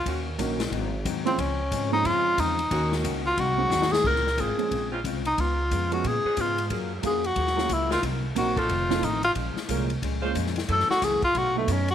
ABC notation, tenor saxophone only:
X:1
M:4/4
L:1/16
Q:"Swing" 1/4=181
K:Db
V:1 name="Tenor saxophone"
z12 z2 C2 | D6 E2 F4 E4- | E2 z4 F2 G6 A2 | B4 A6 z4 E2 |
F6 G2 A4 F3 z | z4 A2 G6 _F2 =F2 | z4 G2 F6 E2 F2 | z16 |
=A2 G2 _A2 F2 G2 =A,2 D2 G2 |]